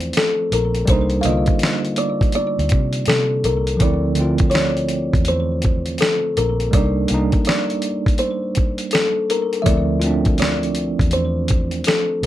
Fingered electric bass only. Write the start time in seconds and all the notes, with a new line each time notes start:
Already playing: E2
0.52 A#1
0.88 C2
1.25 C2
2.59 D2
2.72 C3
3.08 C3
3.44 C2
3.81 D2
5.14 E2
6.37 A#1
6.73 C2
7.11 C2
9.66 D2
11.00 E2
12.23 C2